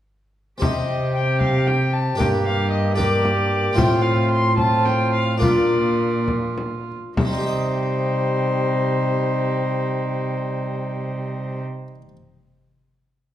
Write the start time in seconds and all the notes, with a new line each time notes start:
0.58 C3 C4 G4 C5 D#5
0.62 C3, frame drum
1.16 G5
1.41 F5, frame drum
1.67 G5, frame drum
1.93 A5
2.15 G2 D4 G4 A#4 G5
2.20 G2 A#3 G4, frame drum
2.45 F5
2.71 D#5
2.95 A#3 D4 G4 A#4 D5, frame drum
3.25 frame drum
3.73 A2 C4 F4 C5 G5
3.77 A2 C4 F4, frame drum
4.02 F5
4.31 C6
4.56 C4 F4 A5, frame drum
4.85 G5, frame drum
5.13 F5
5.38 A#2 A#3 D4 F4 A#4 D5
5.42 A#2 F4, frame drum
6.28 frame drum
6.58 frame drum
7.16 C3 G3 D#4 C5, frame drum
7.25 C4
7.32 D#4
7.39 G4
7.46 D#5